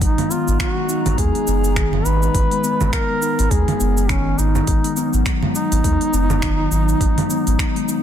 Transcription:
0.01 0.14 G#1 loud
0.01 4.64 G#3 medium
0.01 4.64 B3 medium
0.01 8.03 D#4 medium
0.01 0.33 D#4 loud
0.01 4.64 A#5 medium
0.01 kick loud
0.01 open hi-hat medium
0.01 cabasa soft
0.18 0.26 G#3 medium
0.18 open hi-hat soft
0.18 low conga medium
0.31 0.75 B3 loud
0.31 0.59 F4 loud
0.31 cabasa medium
0.48 0.57 G#1 medium
0.48 cabasa soft
0.60 1.14 F#4 loud
0.60 finger snap loud
0.60 kick loud
0.60 open hi-hat medium
0.60 cabasa soft
0.77 0.88 G#3 medium
0.89 1.05 D#4 medium
0.89 cabasa medium
1.06 1.15 G#1 medium
1.06 1.18 B3 medium
1.06 open hi-hat soft
1.06 low conga medium
1.06 cabasa soft
1.18 1.31 D#2 medium
1.18 1.46 G#3 medium
1.18 2.07 G#4 loud
1.18 kick loud
1.18 open hi-hat medium
1.18 cabasa soft
1.35 open hi-hat soft
1.47 2.01 F#1 loud
1.47 1.75 B3 loud
1.47 cabasa medium
1.64 cabasa soft
1.76 2.04 D#3 loud
1.76 finger snap medium
1.76 kick loud
1.76 open hi-hat medium
1.76 cabasa soft
1.93 low conga medium
2.05 2.29 G#1 medium
2.05 2.21 D#4 medium
2.05 2.92 B4 loud
2.05 cabasa medium
2.22 2.34 B3 medium
2.22 cabasa soft
2.35 2.47 G#1 loud
2.35 kick medium
2.35 open hi-hat medium
2.35 cabasa soft
2.51 2.58 G#3 medium
2.51 open hi-hat soft
2.64 3.08 B3 loud
2.64 cabasa medium
2.81 2.90 G#1 medium
2.81 low conga medium
2.81 cabasa soft
2.93 3.53 A#4 loud
2.93 finger snap medium
2.93 kick loud
2.93 open hi-hat medium
2.93 cabasa soft
3.10 3.21 G#3 medium
3.22 3.38 D#4 medium
3.22 cabasa medium
3.39 3.48 G#1 medium
3.39 3.50 B3 medium
3.39 open hi-hat soft
3.39 cabasa soft
3.51 3.64 D#2 medium
3.51 3.79 G#3 medium
3.51 4.11 G#4 loud
3.51 kick loud
3.51 open hi-hat medium
3.51 cabasa soft
3.68 open hi-hat soft
3.68 low conga medium
3.80 4.34 F#1 loud
3.80 4.08 B3 loud
3.80 cabasa medium
3.97 cabasa soft
4.09 4.37 D#3 loud
4.09 4.40 C#4 loud
4.09 finger snap medium
4.09 kick loud
4.09 open hi-hat medium
4.09 cabasa soft
4.38 4.61 G#1 medium
4.38 4.54 D#4 medium
4.38 5.28 D#4 loud
4.38 cabasa medium
4.55 4.67 B3 medium
4.55 low conga medium
4.55 cabasa soft
4.67 4.80 G#1 loud
4.67 8.03 F#3 medium
4.67 8.03 B3 medium
4.67 kick medium
4.67 open hi-hat medium
4.67 cabasa soft
4.84 4.92 G#3 medium
4.84 open hi-hat soft
4.97 5.41 B3 loud
4.97 cabasa medium
5.13 5.23 G#1 medium
5.13 cabasa soft
5.26 finger snap loud
5.26 kick loud
5.26 open hi-hat medium
5.26 cabasa soft
5.43 5.54 G#3 medium
5.43 low conga medium
5.55 8.03 D#4 loud
5.55 5.71 D#4 medium
5.55 cabasa medium
5.72 5.81 G#1 medium
5.72 5.84 B3 medium
5.72 open hi-hat soft
5.72 cabasa soft
5.84 5.97 D#2 medium
5.84 6.12 G#3 medium
5.84 kick medium
5.84 open hi-hat medium
5.84 cabasa soft
6.01 open hi-hat soft
6.13 6.66 F#1 loud
6.13 6.41 B3 loud
6.13 cabasa medium
6.30 low conga medium
6.30 cabasa soft
6.42 6.70 D#3 loud
6.42 finger snap loud
6.42 kick loud
6.42 open hi-hat medium
6.42 cabasa soft
6.71 6.94 G#1 medium
6.71 6.88 D#4 medium
6.71 cabasa medium
6.89 7.00 B3 medium
6.89 cabasa soft
7.01 7.13 G#1 loud
7.01 kick loud
7.01 open hi-hat medium
7.01 cabasa soft
7.18 7.25 G#3 medium
7.18 open hi-hat soft
7.18 low conga medium
7.30 7.74 B3 loud
7.30 cabasa medium
7.47 7.56 G#1 medium
7.47 open hi-hat soft
7.47 cabasa soft
7.59 finger snap loud
7.59 kick loud
7.59 open hi-hat medium
7.59 cabasa soft
7.76 7.87 G#3 medium
7.76 open hi-hat soft
7.88 8.03 D#4 medium
7.88 cabasa medium

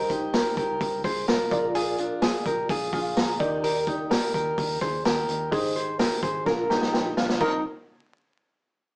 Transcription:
0.00 0.42 C2 loud
0.00 1.48 D#4 medium
0.00 1.48 G4 medium
0.00 0.10 A#4 loud
0.00 1.48 A#4 medium
0.00 1.48 C5 medium
0.10 0.34 D#4 medium
0.10 0.34 G4 medium
0.10 kick medium
0.10 hi-hat pedal medium
0.10 open hi-hat medium
0.33 0.57 G4 medium
0.33 0.56 A#4 medium
0.33 snare loud
0.33 hi-hat pedal medium
0.33 open hi-hat loud
0.57 0.76 C2 loud
0.57 1.02 G4 medium
0.57 1.02 A#4 medium
0.57 kick medium
0.57 hi-hat pedal medium
0.57 open hi-hat medium
0.81 1.00 C2 loud
0.81 kick loud
0.81 hi-hat pedal medium
0.81 open hi-hat medium
1.04 1.24 C2 loud
1.04 1.28 G#4 medium
1.04 1.28 C5 medium
1.04 kick medium
1.04 snare soft
1.04 hi-hat pedal medium
1.04 open hi-hat medium
1.28 1.47 C2 medium
1.28 1.73 F4 medium
1.28 1.72 A#4 medium
1.28 snare loud
1.28 hi-hat pedal medium
1.28 open hi-hat medium
1.51 2.19 A#1 loud
1.51 3.36 F4 medium
1.51 3.36 G#4 medium
1.51 3.36 A#4 medium
1.51 3.36 D5 medium
1.51 kick loud
1.51 hi-hat pedal medium
1.51 open hi-hat medium
1.75 1.98 F4 medium
1.75 1.99 G#4 loud
1.75 hi-hat pedal medium
1.75 open hi-hat loud
1.98 2.23 D4 medium
1.98 2.22 F4 medium
1.98 hi-hat pedal medium
1.98 open hi-hat medium
2.22 2.46 F4 medium
2.22 2.46 G#4 medium
2.22 snare loud
2.22 hi-hat pedal medium
2.22 open hi-hat loud
2.45 2.65 A#1 medium
2.45 2.70 G4 medium
2.45 2.70 A#4 medium
2.45 kick loud
2.45 hi-hat pedal medium
2.45 open hi-hat medium
2.69 2.89 A#1 loud
2.69 2.93 F4 medium
2.69 2.92 G#4 medium
2.69 kick loud
2.69 hi-hat pedal medium
2.69 open hi-hat loud
2.93 3.12 A#1 loud
2.93 3.38 F4 medium
2.93 3.37 G#4 medium
2.93 3.15 F5 medium
2.93 kick medium
2.93 hi-hat pedal medium
2.93 open hi-hat medium
3.17 3.36 A#1 loud
3.17 3.60 A#5 medium
3.17 snare loud
3.17 hi-hat pedal medium
3.17 open hi-hat medium
3.39 4.08 D#2 loud
3.39 5.24 D#4 medium
3.39 3.64 D#4 medium
3.39 5.25 G4 medium
3.39 3.63 G4 medium
3.39 5.25 A#4 medium
3.39 5.25 D5 medium
3.39 kick loud
3.39 hi-hat pedal medium
3.39 open hi-hat medium
3.64 3.86 G4 medium
3.64 3.87 A#4 loud
3.64 hi-hat pedal medium
3.64 open hi-hat loud
3.87 4.11 D#4 medium
3.87 4.10 G4 medium
3.87 kick medium
3.87 hi-hat pedal medium
3.87 open hi-hat medium
4.11 4.34 G4 medium
4.11 4.33 A#4 medium
4.11 snare loud
4.11 hi-hat pedal medium
4.11 open hi-hat loud
4.34 4.54 D#2 loud
4.34 4.79 G4 medium
4.34 4.79 A#4 medium
4.34 kick medium
4.34 hi-hat pedal medium
4.34 open hi-hat medium
4.58 4.77 D#2 loud
4.58 kick loud
4.58 hi-hat pedal medium
4.58 open hi-hat loud
4.81 5.01 D#2 loud
4.81 5.05 G#4 medium
4.81 5.05 C5 medium
4.81 kick medium
4.81 snare soft
4.81 hi-hat pedal medium
4.81 open hi-hat medium
5.05 5.25 D#2 loud
5.05 5.50 G4 medium
5.05 5.50 A#4 medium
5.05 snare loud
5.05 hi-hat pedal medium
5.05 open hi-hat medium
5.29 5.48 D#2 loud
5.29 hi-hat pedal medium
5.29 open hi-hat medium
5.51 6.08 G#1 loud
5.51 6.44 D#4 medium
5.51 5.76 D#4 medium
5.51 6.44 G4 medium
5.51 6.44 G#4 medium
5.51 5.76 G#4 loud
5.51 6.45 C5 loud
5.51 kick loud
5.51 hi-hat pedal medium
5.51 open hi-hat loud
5.76 6.00 G#4 medium
5.76 5.99 C5 medium
5.76 hi-hat pedal medium
5.76 open hi-hat medium
5.99 6.23 G4 medium
5.99 6.23 A#4 medium
5.99 snare loud
5.99 hi-hat pedal medium
5.99 open hi-hat loud
6.23 6.42 G#1 loud
6.23 6.47 G#4 medium
6.23 6.46 C5 medium
6.23 kick medium
6.23 hi-hat pedal medium
6.23 open hi-hat medium
6.46 6.66 A#1 loud
6.46 7.38 D4 medium
6.46 7.39 F4 medium
6.46 6.70 F4 medium
6.46 7.39 G#4 medium
6.46 6.70 A#4 medium
6.46 7.39 A#4 loud
6.46 kick loud
6.46 snare medium
6.70 6.90 A#1 loud
6.70 7.15 D#4 medium
6.70 7.14 G4 medium
6.70 6.92 A#5 medium
6.70 snare medium
6.82 snare medium
6.94 7.13 A#1 loud
6.94 7.15 G5 medium
6.94 snare medium
7.17 7.37 A#1 loud
7.17 7.40 D4 medium
7.17 7.41 F4 medium
7.17 7.39 F5 medium
7.17 snare loud
7.29 snare loud
7.40 7.63 C2 loud
7.40 7.63 C4 medium
7.40 7.63 D#4 medium
7.40 7.63 A#4 loud
7.40 kick loud
7.40 crash medium

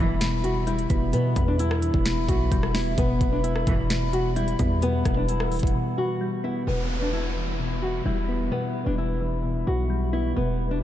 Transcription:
0.00 0.86 E1 loud
0.00 0.17 G2 medium
0.00 0.17 B2 loud
0.00 0.21 B2 medium
0.00 0.17 E3 loud
0.00 1.13 E3 medium
0.00 2.94 G3 medium
0.00 0.40 E4 medium
0.00 4.78 E5 medium
0.00 2.94 B5 medium
0.21 0.43 B2 loud
0.21 snare loud
0.21 closed hi-hat medium
0.44 1.12 B2 medium
0.44 0.62 F#4 medium
0.44 closed hi-hat medium
0.67 1.82 G3 medium
0.67 1.10 E4 medium
0.67 closed hi-hat medium
0.79 closed hi-hat medium
0.90 1.15 E1 loud
0.90 2.05 B3 medium
0.90 kick loud
0.90 closed hi-hat medium
1.13 1.35 B2 loud
1.13 1.46 B3 loud
1.13 closed hi-hat medium
1.36 1.92 E2 loud
1.36 2.04 B2 medium
1.36 kick loud
1.36 closed hi-hat medium
1.48 1.57 D4 medium
1.59 2.25 E4 medium
1.59 closed hi-hat medium
1.71 cross-stick loud
1.82 2.98 E3 medium
1.82 closed hi-hat medium
1.94 2.27 E1 loud
1.94 kick medium
2.05 2.28 B2 medium
2.05 snare loud
2.05 closed hi-hat medium
2.29 2.51 B1 loud
2.29 2.97 B2 medium
2.29 2.72 F#4 medium
2.29 kick loud
2.29 closed hi-hat medium
2.52 2.96 E1 loud
2.52 2.98 G3 loud
2.52 kick loud
2.52 closed hi-hat medium
2.63 cross-stick medium
2.74 2.98 B3 medium
2.74 2.93 E4 medium
2.74 snare loud
2.74 open hi-hat medium
2.98 3.20 E1 loud
2.98 3.20 B2 loud
2.98 6.63 G3 medium
2.98 3.30 B3 loud
2.98 6.63 B5 medium
2.98 kick loud
2.98 closed hi-hat medium
3.21 3.65 E1 loud
3.21 3.89 B2 medium
3.21 kick loud
3.21 closed hi-hat medium
3.32 3.42 D4 medium
3.44 4.09 E4 medium
3.44 closed hi-hat medium
3.56 cross-stick medium
3.67 4.56 E1 loud
3.67 3.87 G2 loud
3.67 3.87 B2 loud
3.67 3.87 E3 loud
3.67 4.83 E3 medium
3.67 kick loud
3.67 closed hi-hat medium
3.90 4.12 B2 medium
3.90 snare loud
3.90 closed hi-hat medium
4.13 4.81 B2 medium
4.13 4.32 F#4 medium
4.13 closed hi-hat medium
4.36 5.52 G3 loud
4.36 4.80 E4 medium
4.36 closed hi-hat medium
4.48 closed hi-hat medium
4.59 5.04 E2 loud
4.59 5.75 B3 medium
4.59 kick loud
4.59 closed hi-hat medium
4.82 5.04 B2 medium
4.82 5.15 B3 loud
4.82 6.65 F#5 medium
4.82 closed hi-hat medium
5.05 5.61 E1 loud
5.05 5.74 B2 medium
5.05 kick loud
5.05 cross-stick medium
5.05 closed hi-hat medium
5.17 5.26 D4 medium
5.29 5.94 E4 medium
5.29 closed hi-hat medium
5.40 cross-stick loud
5.51 6.67 E3 medium
5.51 closed hi-hat soft
5.51 open hi-hat medium
5.59 5.74 E1 loud
5.59 kick medium
5.59 closed hi-hat medium
5.67 closed hi-hat medium
5.75 5.96 B2 loud
5.97 6.66 B2 medium
5.97 6.41 F#4 medium
6.21 6.67 G3 medium
6.44 6.67 B3 medium
6.44 6.63 E4 medium
6.67 8.02 E1 loud
6.67 6.89 B2 medium
6.67 10.33 G3 medium
6.67 7.00 B3 loud
6.67 10.83 E5 medium
6.67 10.83 B5 medium
6.67 downlifter medium
6.90 7.58 B2 medium
7.02 7.11 D4 medium
7.13 7.78 E4 medium
7.37 8.52 E3 medium
7.59 7.81 B2 medium
7.82 8.50 B2 medium
7.82 8.01 F#4 medium
8.05 8.50 E1 loud
8.05 9.21 G3 medium
8.05 8.49 E4 medium
8.28 9.44 B3 medium
8.51 8.73 B2 medium
8.51 8.84 B3 loud
8.75 9.43 B2 medium
8.86 9.64 E1 loud
8.86 8.96 D4 medium
8.98 9.63 E4 medium
9.20 10.36 E3 medium
9.44 9.66 B2 medium
9.67 10.34 B1 loud
9.67 10.35 B2 medium
9.67 10.10 F#4 medium
9.90 10.36 G3 medium
10.13 10.36 B3 medium
10.13 10.32 E4 medium
10.36 10.83 E1 loud
10.36 10.58 B2 loud
10.36 10.69 B3 medium
10.36 10.83 G4 medium
10.59 10.83 B2 medium
10.71 10.80 D4 medium

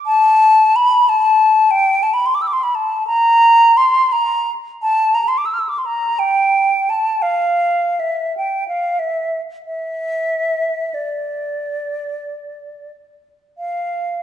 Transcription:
0.06 0.77 A5 loud
0.76 1.10 B5 loud
1.09 1.72 A5 loud
1.71 2.04 G5 loud
2.03 2.15 A5 loud
2.14 2.28 B5 medium
2.26 2.36 C6 medium
2.35 2.43 D6 medium
2.42 2.49 E6 medium
2.47 2.54 D6 medium
2.53 2.65 C6 medium
2.63 2.77 B5 medium
2.75 3.06 A5 medium
3.07 3.79 A#5 loud
3.77 4.14 C6 loud
4.12 4.51 A#5 loud
4.82 5.16 A5 loud
5.14 5.30 A#5 medium
5.28 5.39 C6 medium
5.38 5.47 D6 medium
5.45 5.55 E6 medium
5.54 5.61 F6 medium
5.59 5.70 E6 medium
5.69 5.80 D6 medium
5.78 5.87 C6 medium
5.86 6.21 A#5 medium
6.19 6.91 G5 loud
6.90 7.24 A5 loud
7.22 8.01 F5 loud
8.00 8.37 E5 medium
8.37 8.67 G5 medium
8.68 9.01 F5 medium
8.99 9.41 E5 medium
9.65 10.96 E5 medium
10.94 12.91 D5 medium
13.58 14.23 F5 medium

